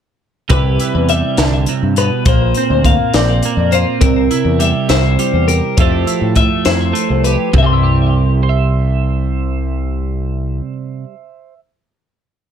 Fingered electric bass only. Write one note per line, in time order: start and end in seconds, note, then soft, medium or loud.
0.50 0.77 C2 medium
0.95 1.21 E2 medium
1.38 1.65 C2 medium
1.83 2.09 G2 medium
2.26 2.52 A#1 medium
2.70 2.97 D2 medium
3.14 3.40 A#1 medium
3.57 3.84 F2 medium
4.02 4.28 C2 medium
4.45 4.72 E2 medium
4.89 5.16 C2 medium
5.33 5.60 E2 medium
5.77 6.04 F2 medium
6.21 6.48 A2 medium
6.66 6.92 F2 medium
7.10 7.36 C2 medium
7.54 10.60 C2 medium